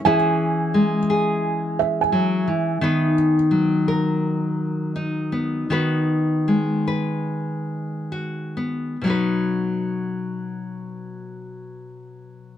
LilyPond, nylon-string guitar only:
\new Staff \with { instrumentName = "Nylon-string guitar" } { \time 4/4 \key b \major \tempo 4 = 80 << { <cis' e' gis'>4. gis'2~ gis'8 | <b b'>4. ais'4. dis'8 b8 | <b fis' b'>4. b'4. fis'8 b8 | <fis dis' fis' b'>1 | } \\ { e4 gis2 fis8 e8 | dis4 fis2. | dis4 gis2. | b,1 | } >> }